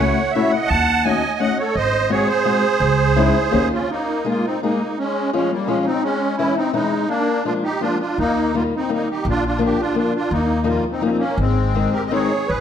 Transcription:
Already playing: accordion C#5 F#5
0.00 steel-string acoustic guitar A3 C#4 E4 F#4
0.31 steel-string acoustic guitar A3, accordion E5
0.35 steel-string acoustic guitar C#4 E4 F#4, accordion C#5
0.50 accordion F#5
0.54 accordion D#5
0.67 upright bass D#2, accordion F#5 A5
1.04 steel-string acoustic guitar A3 C#4 D#4 F#4, accordion D#5 G#5
1.39 steel-string acoustic guitar A3 C#4 D#4 F#4, accordion D#5 F#5
1.58 accordion A4 C#5
1.75 upright bass G#1, accordion C5 D#5
2.09 steel-string acoustic guitar G#3 C4 D#4 F#4, accordion G#4 C#5
2.27 accordion G#4 C5
2.45 steel-string acoustic guitar G#3 C4 D#4 F#4
2.80 upright bass C#2
3.16 steel-string acoustic guitar G#3 C#4 D#4 E4
3.51 upright bass D#2, steel-string acoustic guitar A#3 C#4 D#4 G4
3.72 accordion C#4 F4
3.90 accordion A#3 D#4
4.24 steel-string acoustic guitar G#3 A#3 D#4 G#4, accordion F4
4.29 accordion A#3
4.44 accordion C4 D#4
4.62 steel-string acoustic guitar G#3 A#3 D#4 G#4, accordion A#3 D#4
4.98 accordion G#3 C#4
5.33 steel-string acoustic guitar F3 G#3 C#4 F4, accordion G#3 C#4
5.51 accordion G3 A#3
5.66 steel-string acoustic guitar F3 G#3 C#4 F4, accordion G#3 C#4
5.85 accordion C4 D#4
6.03 accordion G#3 C#4
6.37 steel-string acoustic guitar E3 G#3 C#4 E4, accordion C#4 E4
6.56 accordion C4 D#4
6.72 steel-string acoustic guitar E3 G#3 C#4 E4, accordion G#3 D#4
7.08 accordion A#3 D4
7.45 steel-string acoustic guitar F3 G#3 A#3 D4, accordion D4 F4
7.63 accordion D#4 G4
7.80 steel-string acoustic guitar F3 G#3 A#3 D4, accordion D4 F4
8.00 accordion D4 F4
8.18 upright bass D#2, accordion A#3 D#4
8.54 steel-string acoustic guitar D#3 G3 A#3 D#4, accordion A#3 F4
8.76 accordion C4 D#4
8.89 steel-string acoustic guitar D#3 G3 A#3 D#4, accordion A#3 D#4
9.10 accordion D#4 G4
9.25 upright bass A#1, accordion F4
9.29 accordion D4
9.46 accordion D4 F4
9.58 steel-string acoustic guitar D3 F3 A#3 D4
9.63 accordion D4 G4
9.79 accordion D4 F4
9.94 steel-string acoustic guitar D3 F3 A#3 D4, accordion D4 F4
10.15 accordion D4 F4
10.31 upright bass D#2, accordion A#3 D#4
10.64 steel-string acoustic guitar F3 G3 A#3 D#4, accordion A#3 F4
10.90 accordion C4 D#4
11.01 steel-string acoustic guitar F3 G3 A#3 D#4, accordion A#3 C#4
11.10 accordion C4
11.17 accordion A#3 C#4
11.38 upright bass G#1, accordion G#3 C4
11.75 steel-string acoustic guitar D#3 G#3 C4 D#4
11.93 accordion G4 A#4
12.06 accordion D#5
12.11 steel-string acoustic guitar D#3 G#3 C4 D#4, accordion G#4 C#5
12.48 upright bass G#1, accordion G#4 B4

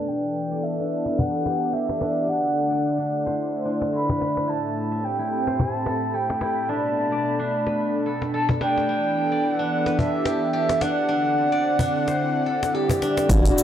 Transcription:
Already playing: analog synth pad D4 A4 B4, singing bowl D4 D5, guzheng E4 A4 B4 D5
0.08 analog synth pad E3, guzheng D4, soft synth lead G5
0.44 analog synth pad B3
0.51 guzheng D5
0.63 soft synth lead E5
0.79 guzheng D4
1.06 analog synth pad G4 D5, guzheng B4, cajon slap
1.18 soft synth lead F#5, cajon bass
1.46 guzheng G4, cajon slap
1.72 guzheng G4, soft synth lead E5
1.89 cajon slap
2.00 guzheng D4, cajon slap
2.28 analog synth pad D3, guzheng D4, soft synth lead F#5
2.53 analog synth pad A3
2.71 guzheng D5
2.98 guzheng D4
3.17 analog synth pad E4
3.26 guzheng C5, analog synth pad C5, cajon slap
3.65 guzheng D4
3.82 cajon slap
3.93 guzheng F#4, soft synth lead B5
4.09 guzheng D4, cajon bass, cajon slap
4.20 guzheng F#4, cajon slap
4.37 cajon slap
4.47 analog synth pad A2, guzheng E4, soft synth lead A5
4.92 guzheng E5
4.98 analog synth pad C4 G4
5.04 soft synth lead G5
5.19 guzheng E4
5.47 guzheng C5, analog synth pad B5, cajon slap
5.60 soft synth lead A5, cajon bass
5.86 guzheng A4, cajon slap
6.13 guzheng A4, soft synth lead G5
6.30 cajon slap
6.41 guzheng E4, soft synth lead G5, cajon slap
6.69 analog synth pad B2, guzheng D4, soft synth lead A5
7.12 guzheng D5
7.39 guzheng D4
7.56 analog synth pad A4
7.66 analog synth pad D4, guzheng B4, cajon slap
8.06 guzheng A4
8.22 cajon slap
8.34 guzheng A4, soft synth lead A5
8.49 cajon bass, cajon slap
8.61 guzheng D4, soft synth lead G5, cajon slap
8.78 cajon slap
8.89 analog synth pad E3, guzheng D4
9.08 analog synth pad B3
9.32 guzheng D5
9.44 soft synth lead F#5
9.59 guzheng D4
9.86 guzheng B4, cajon slap
9.91 analog synth pad G4 D5
9.99 soft synth lead E5, cajon bass
10.25 guzheng G4, cajon slap
10.53 guzheng G4, soft synth lead E5
10.69 cajon slap
10.81 guzheng D4, soft synth lead F#5, cajon slap
11.09 analog synth pad D3, guzheng D4
11.29 analog synth pad C4
11.52 guzheng D5
11.79 guzheng D4, cajon bass
11.90 analog synth pad E4
12.07 guzheng C5, cajon slap
12.46 guzheng A4
12.63 cajon slap
12.74 soft synth lead G4, guzheng A4
12.89 cajon bass, cajon slap
13.02 guzheng D4, cajon slap
13.17 cajon slap
13.29 analog synth bass A1, analog synth pad A2, singing bowl D4 D5, guzheng E4, soft synth lead F#4, kick, open hi-hat, shaker
13.46 open hi-hat, shaker
13.58 shaker

